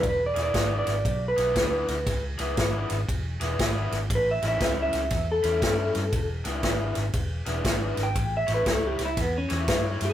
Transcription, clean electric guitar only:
0, 0, Header, 1, 2, 480
1, 0, Start_track
1, 0, Tempo, 507614
1, 35, Time_signature, 4, 2, 24, 8
1, 9580, End_track
2, 0, Start_track
2, 0, Title_t, "Clean electric guitar"
2, 0, Program_c, 0, 27
2, 83, Note_on_c, 0, 71, 78
2, 215, Note_off_c, 0, 71, 0
2, 249, Note_on_c, 0, 74, 74
2, 378, Note_off_c, 0, 74, 0
2, 405, Note_on_c, 0, 74, 76
2, 691, Note_off_c, 0, 74, 0
2, 744, Note_on_c, 0, 74, 71
2, 1176, Note_off_c, 0, 74, 0
2, 1213, Note_on_c, 0, 71, 84
2, 2116, Note_off_c, 0, 71, 0
2, 3926, Note_on_c, 0, 71, 89
2, 4056, Note_off_c, 0, 71, 0
2, 4077, Note_on_c, 0, 76, 83
2, 4212, Note_off_c, 0, 76, 0
2, 4236, Note_on_c, 0, 76, 73
2, 4526, Note_off_c, 0, 76, 0
2, 4561, Note_on_c, 0, 76, 81
2, 5004, Note_off_c, 0, 76, 0
2, 5026, Note_on_c, 0, 69, 93
2, 5942, Note_off_c, 0, 69, 0
2, 7595, Note_on_c, 0, 79, 84
2, 7885, Note_off_c, 0, 79, 0
2, 7914, Note_on_c, 0, 76, 87
2, 8050, Note_off_c, 0, 76, 0
2, 8079, Note_on_c, 0, 71, 82
2, 8235, Note_off_c, 0, 71, 0
2, 8235, Note_on_c, 0, 69, 72
2, 8370, Note_off_c, 0, 69, 0
2, 8388, Note_on_c, 0, 67, 72
2, 8527, Note_off_c, 0, 67, 0
2, 8561, Note_on_c, 0, 64, 83
2, 8693, Note_off_c, 0, 64, 0
2, 8711, Note_on_c, 0, 59, 83
2, 8848, Note_off_c, 0, 59, 0
2, 8865, Note_on_c, 0, 61, 77
2, 9104, Note_off_c, 0, 61, 0
2, 9502, Note_on_c, 0, 69, 80
2, 9580, Note_off_c, 0, 69, 0
2, 9580, End_track
0, 0, End_of_file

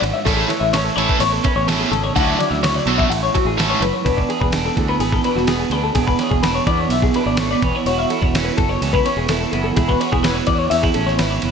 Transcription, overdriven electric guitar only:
0, 0, Header, 1, 3, 480
1, 0, Start_track
1, 0, Key_signature, 3, "major"
1, 0, Tempo, 475436
1, 266, Time_signature, 4, 2, 24, 8
1, 11622, End_track
2, 0, Start_track
2, 0, Title_t, "Overdriven electric guitar"
2, 0, Program_c, 0, 29
2, 260, Note_on_c, 0, 57, 71
2, 270, Note_on_c, 0, 61, 71
2, 273, Note_on_c, 0, 64, 77
2, 275, Note_on_c, 0, 69, 86
2, 490, Note_off_c, 0, 69, 0
2, 496, Note_off_c, 0, 64, 0
2, 500, Note_off_c, 0, 61, 0
2, 502, Note_off_c, 0, 57, 0
2, 988, Note_on_c, 0, 64, 71
2, 990, Note_on_c, 0, 69, 96
2, 994, Note_on_c, 0, 61, 68
2, 1000, Note_on_c, 0, 57, 72
2, 1217, Note_off_c, 0, 57, 0
2, 1220, Note_off_c, 0, 61, 0
2, 1222, Note_off_c, 0, 64, 0
2, 1227, Note_off_c, 0, 69, 0
2, 1704, Note_on_c, 0, 57, 65
2, 1707, Note_on_c, 0, 61, 68
2, 1709, Note_on_c, 0, 64, 66
2, 1720, Note_on_c, 0, 69, 68
2, 1931, Note_off_c, 0, 64, 0
2, 1931, Note_off_c, 0, 69, 0
2, 1935, Note_off_c, 0, 61, 0
2, 1944, Note_off_c, 0, 57, 0
2, 2177, Note_on_c, 0, 57, 71
2, 2183, Note_on_c, 0, 66, 78
2, 2184, Note_on_c, 0, 62, 77
2, 2188, Note_on_c, 0, 69, 83
2, 2409, Note_off_c, 0, 57, 0
2, 2409, Note_off_c, 0, 69, 0
2, 2411, Note_off_c, 0, 62, 0
2, 2411, Note_off_c, 0, 66, 0
2, 2899, Note_on_c, 0, 69, 86
2, 2902, Note_on_c, 0, 66, 80
2, 2907, Note_on_c, 0, 62, 76
2, 2910, Note_on_c, 0, 57, 71
2, 3127, Note_off_c, 0, 57, 0
2, 3135, Note_off_c, 0, 69, 0
2, 3138, Note_off_c, 0, 62, 0
2, 3141, Note_off_c, 0, 66, 0
2, 3609, Note_on_c, 0, 57, 65
2, 3612, Note_on_c, 0, 61, 73
2, 3616, Note_on_c, 0, 64, 67
2, 3617, Note_on_c, 0, 69, 80
2, 3850, Note_off_c, 0, 69, 0
2, 3854, Note_off_c, 0, 61, 0
2, 3855, Note_off_c, 0, 64, 0
2, 3856, Note_off_c, 0, 57, 0
2, 11622, End_track
3, 0, Start_track
3, 0, Title_t, "Muted overdriven electric guitar strokes"
3, 26, Note_on_c, 9, 29, 51
3, 127, Note_off_c, 9, 29, 0
3, 502, Note_on_c, 9, 29, 38
3, 603, Note_off_c, 9, 29, 0
3, 751, Note_on_c, 9, 29, 44
3, 852, Note_off_c, 9, 29, 0
3, 1229, Note_on_c, 9, 29, 41
3, 1330, Note_off_c, 9, 29, 0
3, 1460, Note_on_c, 9, 29, 47
3, 1561, Note_off_c, 9, 29, 0
3, 1943, Note_on_c, 9, 29, 48
3, 2044, Note_off_c, 9, 29, 0
3, 2421, Note_on_c, 9, 29, 34
3, 2522, Note_off_c, 9, 29, 0
3, 2658, Note_on_c, 9, 29, 37
3, 2759, Note_off_c, 9, 29, 0
3, 3139, Note_on_c, 9, 29, 43
3, 3240, Note_off_c, 9, 29, 0
3, 3378, Note_on_c, 9, 29, 43
3, 3479, Note_off_c, 9, 29, 0
3, 3862, Note_on_c, 9, 29, 52
3, 3963, Note_off_c, 9, 29, 0
3, 11622, End_track
0, 0, End_of_file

